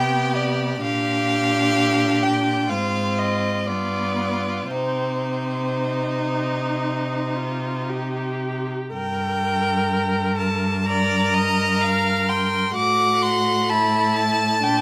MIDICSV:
0, 0, Header, 1, 5, 480
1, 0, Start_track
1, 0, Key_signature, -3, "minor"
1, 0, Tempo, 937500
1, 423, Time_signature, 4, 2, 24, 8
1, 1385, Tempo, 972447
1, 1865, Tempo, 1052632
1, 4265, Key_signature, -2, "minor"
1, 4265, Tempo, 956938
1, 5705, Tempo, 940439
1, 7237, End_track
2, 0, Start_track
2, 0, Title_t, "Violin"
2, 0, Program_c, 0, 40
2, 0, Note_on_c, 0, 79, 81
2, 184, Note_on_c, 0, 74, 59
2, 191, Note_off_c, 0, 79, 0
2, 417, Note_off_c, 0, 74, 0
2, 421, Note_on_c, 0, 77, 83
2, 1140, Note_on_c, 0, 79, 63
2, 1148, Note_off_c, 0, 77, 0
2, 1379, Note_on_c, 0, 77, 66
2, 1387, Note_off_c, 0, 79, 0
2, 1620, Note_on_c, 0, 75, 61
2, 1627, Note_off_c, 0, 77, 0
2, 1859, Note_on_c, 0, 74, 62
2, 1867, Note_off_c, 0, 75, 0
2, 2333, Note_off_c, 0, 74, 0
2, 2335, Note_on_c, 0, 72, 52
2, 3769, Note_off_c, 0, 72, 0
2, 4262, Note_on_c, 0, 79, 70
2, 4970, Note_off_c, 0, 79, 0
2, 4987, Note_on_c, 0, 81, 60
2, 5226, Note_on_c, 0, 82, 75
2, 5234, Note_off_c, 0, 81, 0
2, 5948, Note_on_c, 0, 84, 60
2, 5956, Note_off_c, 0, 82, 0
2, 6184, Note_off_c, 0, 84, 0
2, 6187, Note_on_c, 0, 86, 73
2, 6426, Note_on_c, 0, 84, 73
2, 6434, Note_off_c, 0, 86, 0
2, 6669, Note_on_c, 0, 83, 65
2, 6677, Note_off_c, 0, 84, 0
2, 6905, Note_on_c, 0, 81, 68
2, 6913, Note_off_c, 0, 83, 0
2, 7147, Note_on_c, 0, 79, 70
2, 7155, Note_off_c, 0, 81, 0
2, 7237, Note_off_c, 0, 79, 0
2, 7237, End_track
3, 0, Start_track
3, 0, Title_t, "Violin"
3, 0, Program_c, 1, 40
3, 0, Note_on_c, 1, 67, 50
3, 409, Note_off_c, 1, 67, 0
3, 416, Note_on_c, 1, 67, 56
3, 1362, Note_off_c, 1, 67, 0
3, 1381, Note_on_c, 1, 65, 49
3, 1854, Note_off_c, 1, 65, 0
3, 1867, Note_on_c, 1, 65, 42
3, 2333, Note_on_c, 1, 63, 39
3, 2339, Note_off_c, 1, 65, 0
3, 4169, Note_off_c, 1, 63, 0
3, 5233, Note_on_c, 1, 74, 56
3, 5469, Note_on_c, 1, 75, 57
3, 5477, Note_off_c, 1, 74, 0
3, 5707, Note_on_c, 1, 77, 55
3, 5715, Note_off_c, 1, 75, 0
3, 5949, Note_on_c, 1, 79, 48
3, 5956, Note_off_c, 1, 77, 0
3, 6180, Note_off_c, 1, 79, 0
3, 6183, Note_on_c, 1, 78, 60
3, 6665, Note_on_c, 1, 81, 59
3, 6673, Note_off_c, 1, 78, 0
3, 7237, Note_off_c, 1, 81, 0
3, 7237, End_track
4, 0, Start_track
4, 0, Title_t, "Viola"
4, 0, Program_c, 2, 41
4, 0, Note_on_c, 2, 59, 49
4, 421, Note_off_c, 2, 59, 0
4, 424, Note_on_c, 2, 62, 52
4, 1385, Note_on_c, 2, 60, 47
4, 1393, Note_off_c, 2, 62, 0
4, 1865, Note_on_c, 2, 59, 39
4, 1872, Note_off_c, 2, 60, 0
4, 2333, Note_off_c, 2, 59, 0
4, 2335, Note_on_c, 2, 60, 41
4, 2758, Note_off_c, 2, 60, 0
4, 2815, Note_on_c, 2, 63, 43
4, 3544, Note_on_c, 2, 65, 43
4, 3550, Note_off_c, 2, 63, 0
4, 3786, Note_on_c, 2, 67, 39
4, 3793, Note_off_c, 2, 65, 0
4, 4262, Note_off_c, 2, 67, 0
4, 4265, Note_on_c, 2, 70, 54
4, 5210, Note_off_c, 2, 70, 0
4, 5232, Note_on_c, 2, 70, 52
4, 6169, Note_off_c, 2, 70, 0
4, 6185, Note_on_c, 2, 66, 53
4, 6667, Note_on_c, 2, 64, 49
4, 6675, Note_off_c, 2, 66, 0
4, 7144, Note_off_c, 2, 64, 0
4, 7147, Note_on_c, 2, 62, 50
4, 7237, Note_off_c, 2, 62, 0
4, 7237, End_track
5, 0, Start_track
5, 0, Title_t, "Cello"
5, 0, Program_c, 3, 42
5, 0, Note_on_c, 3, 48, 47
5, 402, Note_off_c, 3, 48, 0
5, 423, Note_on_c, 3, 46, 50
5, 1385, Note_on_c, 3, 44, 51
5, 1392, Note_off_c, 3, 46, 0
5, 1866, Note_on_c, 3, 43, 44
5, 1873, Note_off_c, 3, 44, 0
5, 2332, Note_off_c, 3, 43, 0
5, 2334, Note_on_c, 3, 48, 37
5, 4152, Note_off_c, 3, 48, 0
5, 4266, Note_on_c, 3, 43, 50
5, 6168, Note_off_c, 3, 43, 0
5, 6186, Note_on_c, 3, 45, 50
5, 7144, Note_on_c, 3, 46, 56
5, 7152, Note_off_c, 3, 45, 0
5, 7237, Note_off_c, 3, 46, 0
5, 7237, End_track
0, 0, End_of_file